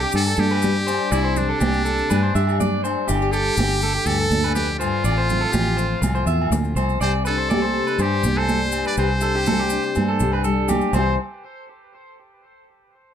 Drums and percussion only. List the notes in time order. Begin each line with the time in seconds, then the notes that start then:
0.01 maracas
0.12 muted conga, low agogo, maracas
0.37 muted conga, high conga, maracas
0.50 low agogo, maracas
0.62 high conga, maracas
0.88 low agogo, maracas
1.12 muted conga, low agogo, maracas
1.36 low conga, maracas
1.61 muted conga, high conga, low agogo, maracas
1.73 maracas
1.86 maracas
1.98 maracas
2.10 muted conga, high conga, low agogo, maracas
2.36 muted conga, maracas
2.47 low agogo, maracas
2.61 high conga, low conga, maracas
2.85 low agogo, maracas
3.08 muted conga, low agogo, maracas
3.33 maracas
3.57 muted conga, high conga, low agogo, maracas
3.70 maracas
3.82 maracas
4.06 muted conga, low agogo, maracas
4.31 muted conga, high conga, maracas
4.44 low agogo, maracas
4.56 high conga, maracas
4.81 low agogo, maracas
5.04 muted conga, low agogo, maracas
5.29 low conga, maracas
5.53 muted conga, high conga, low agogo, maracas
5.78 maracas
6.03 muted conga, high conga, low agogo, maracas
6.15 maracas
6.27 muted conga, maracas
6.42 low agogo
6.52 high conga, low conga, maracas
6.64 maracas
6.77 low agogo, maracas
6.89 maracas
7.01 muted conga, low agogo, maracas
7.26 maracas
7.51 muted conga, high conga, low agogo, maracas
7.87 maracas
7.99 low agogo, maracas
8.23 muted conga, high conga, maracas
8.37 low agogo
8.49 high conga, maracas
8.72 low agogo, maracas
8.85 maracas
8.97 muted conga, low agogo, maracas
9.21 maracas
9.46 muted conga, high conga, low conga, low agogo, maracas
9.70 maracas
9.83 maracas
9.95 muted conga, high conga, low agogo, maracas
10.20 muted conga, maracas
10.32 low agogo
10.44 maracas
10.68 high conga, low conga, low agogo, maracas
10.81 maracas
10.93 muted conga, low agogo, maracas